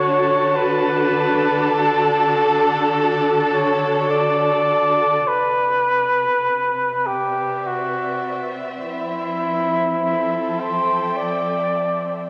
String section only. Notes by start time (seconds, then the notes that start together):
Already playing: D3 D4 F#4 A4 A5
5.27 C3
5.50 C4
6.28 B4
6.86 D5 E5
8.83 F3
9.66 A4
10.40 G5